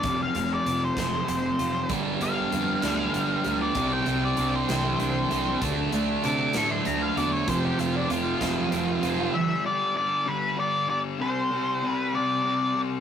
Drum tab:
HH |xxxxxx|xxxxxx|xxxxxx|xxxxxx|
SD |---o--|---o--|---o--|---o--|
BD |o--o--|o-----|o-----|o-----|

HH |xxxxxx|------|------|
SD |---o--|------|------|
BD |o--o--|------|------|